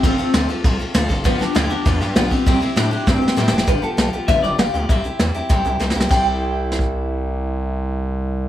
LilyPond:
<<
  \new Staff \with { instrumentName = "Clean electric guitar" } { \time 4/4 \key c \major \tempo 4 = 198 c'4. r2 r8 | b8 d'8 e'8 d'4 r8 b8 c'8~ | c'8 c'8 d'4 c'4 r4 | b'8 a'4 r8 e''8 d''8 f''8 d''8 |
e''2. r4 | g''1~ | g''1 | }
  \new Staff \with { instrumentName = "Steel-string acoustic guitar" } { \time 4/4 \key c \major <f c' f' a'>8 <c' f' a'>8 <f c' f' a'>8 <c' f' a'>8 <f c' f' a'>8 <c' f' a'>8 <f c' f' a'>8 <c' f' a'>8 | <g, d f b f' g'>8 <f b f' g'>8 <g, d f b f' g'>8 <f b f' g'>8 <f b f' g'>8 <f b f' g'>8 <g, d f b f' g'>8 <f b f' g'>8 | <c g c' e' g'>8 <c' e' g'>8 <c g c' e' g'>8 <c' e' g'>8 <g c' e' g'>8 <c' e' g'>8 <c g c' e' g'>8 <c' e' g'>8 | <g, d f b f' g'>8 <f b f' g'>8 <f b f' g'>8 <f b f' g'>8 <g, d f b f' g'>8 <f b f' g'>8 <f b f' g'>8 <f b f' g'>8 |
<c g c' e' g'>8 <c' e' g'>8 <g c' e' g'>8 <c' e' g'>8 <c g c' e' g'>8 <c' e' g'>8 <g c' e' g'>8 <c' e' g'>8 | <c g c' e' g'>1~ | <c g c' e' g'>1 | }
  \new Staff \with { instrumentName = "Analog synth bass" } { \clef bass \time 4/4 \key c \major f,,8 f,,8 d,8 d,8 c,8 c,8 d,8 fis,,8 | g,,8 g,,8 d,8 d,8 e,8 g,8 b,,8 b,,8 | c,8 c,8 a,8 a,8 g,8 g,8 a,8 f,,8 | g,,8 g,,8 b,,8 b,,8 g,,8 g,,8 g,,8 d,8 |
c,8 c,8 e,8 e,8 c,8 c,8 c,8 c,8 | c,1~ | c,1 | }
  \new DrumStaff \with { instrumentName = "Drums" } \drummode { \time 4/4 <bd cymr sn>8 cymr8 <cymr sn>8 cymr8 <bd cymr>8 cymr8 <cymr sn>8 <bd cymr>8 | <bd cymr>8 <cymr sn>8 <cymr sn>8 cymr8 <bd cymr sn>8 <cymr sn>8 <cymr sn>8 <bd cymr>8 | <bd cymr>8 cymr8 <cymr sn>8 cymr8 \tuplet 3/2 { <bd sn>8 r8 sn8 sn8 sn8 sn8 } | <hh bd>8 hh8 <hh sn>8 hh8 <hh bd>8 hh8 <hh sn>8 hh8 |
<hh bd>8 hh8 <hh sn>8 hh8 <hh bd>8 hh8 \tuplet 3/2 { sn8 sn8 sn8 } | <cymc bd>4 r4 sn16 bd8. r4 | r4 r4 r4 r4 | }
>>